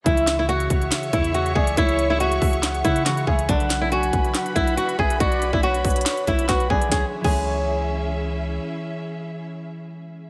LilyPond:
<<
  \new Staff \with { instrumentName = "Soft synth lead" } { \time 4/4 \key cis \phrygian \tempo 4 = 140 e''4 fis''4 e''4. d''8 | cis''4 e''4 fis''4. e''8 | fis''4 gis''4 fis''4. e''8 | d''4 cis''2 b'8 d''8 |
cis''16 r8 cis''2~ cis''16 r4 | r1 | }
  \new Staff \with { instrumentName = "String section" } { \time 4/4 \key cis \phrygian <gis' cis'' e'' cis'''>1~ | <gis' cis'' e'' cis'''>1 | <d' fis' b' b''>1~ | <d' fis' b' b''>1 |
<cis' e' gis' e''>1~ | <cis' e' gis' e''>1 | }
  \new Staff \with { instrumentName = "Nylon-string guitar" } { \time 4/4 \key cis \phrygian e'8. e'16 fis'4. e'8 fis'8 gis'8 | e'8. e'16 fis'4. e'8 fis'8 gis'8 | d'8. e'16 fis'4. e'8 fis'8 gis'8 | fis'8. e'16 fis'4. e'8 fis'8 gis'8 |
gis'16 r8 gis'2~ gis'16 r4 | r1 | }
  \new Staff \with { instrumentName = "Harp" } { \clef bass \time 4/4 \key cis \phrygian <cis e gis e'>1~ | <cis e gis e'>2. <cis e gis b>4 | <d fis b fis'>1~ | <d fis b fis'>2.~ <d fis b fis'>8 <d fis b fis'>8 |
<e gis cis' gis'>16 r8 <e gis cis' gis'>2.~ <e gis cis' gis'>16~ | <e gis cis' gis'>1 | }
  \new Staff \with { instrumentName = "808-style bass" } { \clef bass \time 4/4 \key cis \phrygian cis,4. cis,8 r8 e,4 cis,8 | cis,4. cis,4 cis4 cis,8 | b,,4. b,,8 r8 b,,8 r8 b,,8 | b,,8. b,,8. b,,8 r8 b,,8 b,,8 b,,8 |
cis,16 r8 cis,2.~ cis,16 | r1 | }
  \new DrumStaff \with { instrumentName = "Drums" } \drummode { \time 4/4 <hh bd>16 hh16 <hc hh sn>8 hh16 hh16 <hh bd>16 hh16 <hc hh sn>16 hh16 <hh bd>16 hh16 hh16 hh16 bd16 hh16 | <hh bd>16 hh16 hh8 hh16 hh16 <hho bd>16 hh16 <hc hh sn>16 hh16 <hh bd>16 hh16 <hc hh sn>16 hh16 bd16 hh16 | <hh bd>16 hh16 <hc hh sn>8 hh16 hh16 <hh bd>16 hh16 <hc hh sn>16 hh16 <hh bd>16 hh16 hh16 hh16 bd16 hh16 | <hh bd>16 hh16 hh16 bd16 hh16 hh16 <hh hho bd>32 hh32 hh32 hh32 <hc sn>16 hh16 <hh bd>16 hh16 <hc hh bd sn>16 hh16 bd16 hh16 |
<bd sn>8. <cymc bd>16 r4 r4 r4 | r4 r4 r4 r4 | }
>>